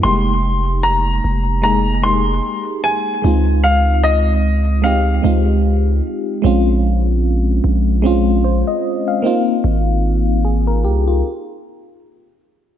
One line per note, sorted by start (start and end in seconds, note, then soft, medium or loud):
0.02 1.20 F1 loud
0.02 0.11 G3 medium
0.02 1.35 A#3 medium
0.02 1.36 D#4 medium
0.02 0.86 C6 loud
0.06 1.38 G#3 medium
0.06 1.37 G4 medium
0.83 1.62 A#5 medium
1.24 2.40 F1 loud
1.62 1.97 G#3 medium
1.62 1.97 A#3 medium
1.62 1.98 D#4 medium
1.62 2.01 A#5 medium
1.66 1.99 G#4 medium
2.02 3.03 G#3 medium
2.02 3.04 A#3 medium
2.02 3.05 D#4 medium
2.02 2.86 C6 loud
2.06 2.13 G4 medium
2.13 3.09 G#4 medium
2.84 3.66 G#5 medium
3.22 5.20 C#2 loud
3.22 4.54 G#3 medium
3.22 4.55 C4 medium
3.22 4.56 D#4 medium
3.26 4.57 F4 medium
3.64 4.05 F5 medium
4.03 4.86 D#5 medium
4.82 5.17 G#3 medium
4.82 5.17 C4 medium
4.82 5.18 D#4 medium
4.82 5.60 F5 medium
4.86 5.19 G4 medium
5.22 6.01 C#2 loud
5.22 6.23 G#3 medium
5.22 6.24 C4 medium
5.22 6.25 D#4 medium
5.22 6.25 F4 medium
6.42 7.60 A#1 loud
6.42 7.75 G#3 medium
6.42 7.75 C4 medium
6.42 7.76 C#4 medium
6.46 7.77 F4 medium
7.64 8.63 A#1 loud
8.02 8.37 G#3 medium
8.02 8.38 C4 medium
8.02 8.38 C#4 medium
8.06 8.39 F4 loud
8.44 8.66 C5 medium
8.67 9.05 D#5 medium
9.08 9.45 F5 medium
9.22 10.55 A#3 medium
9.22 10.55 C4 medium
9.22 10.56 D#4 medium
9.26 10.45 F4 loud
9.64 10.86 G#1 loud
10.45 10.66 G#4 medium
10.67 10.83 A#4 medium
10.84 11.22 C2 medium
10.84 11.06 G4 medium
11.08 11.45 F4 medium